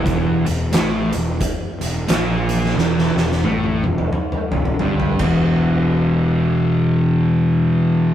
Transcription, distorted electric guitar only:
X:1
M:4/4
L:1/8
Q:"Swing" 1/4=88
K:Em
V:1 name="Distorted electric guitar" clef=bass
[E,,E,] E,, [A,,A,] E,, z E,, [^A,,^A,]2 | [E,,E,] E,, [A,,A,] E,, z E,, [G,,G,] [E,,B,,E,]- | [E,,B,,E,]8 |]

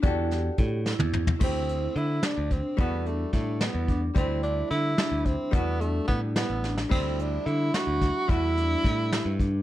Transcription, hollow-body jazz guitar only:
X:1
M:5/8
L:1/8
Q:1/4=109
K:Em
V:1 name="Hollow-body jazz guitar"
[DFGA]4- [DFGA] | [A,CEG]4- [A,CEG] | [G,A,DF]4- [G,A,DF] | [G,A,CE]4- [G,A,CE] |
[G,A,DF]4- [G,A,DF] | [G,A,CE]4- [G,A,CE] | [G,A,DF]4- [G,A,DF] |]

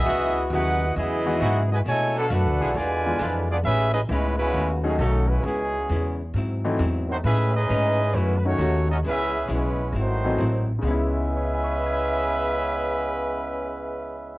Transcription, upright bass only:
X:1
M:4/4
L:1/8
Q:"Swing" 1/4=133
K:C#m
V:1 name="Upright bass" clef=bass
C,,2 D,,2 E,,2 G,,2 | B,,2 (3F,, =D,, B,,, E,,2 =F,,2 | A,,,2 C,,2 D,,2 B,,,2 | C,,2 E,,2 G,,2 E,,2 |
A,,2 G,,2 F,,2 D,,2 | C,,2 B,,,2 G,,,2 A,,,2 | C,,8- | C,,8 |]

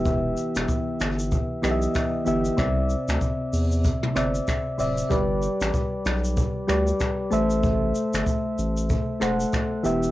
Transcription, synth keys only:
X:1
M:4/4
L:1/8
Q:"Swing 16ths" 1/4=95
K:Ador
V:1 name="Synth keys"
[E,B,Ge]2 z3 [E,B,G^de]2 [E,B,Ge] | [C,Cde]3 z2 [C,Cde]2 [C,Cde] | [G,GBd]3 z2 [G,GBd]2 [A,Ace]- | [A,Ace]2 z3 [A,Acf]2 [E,B,Ge] |]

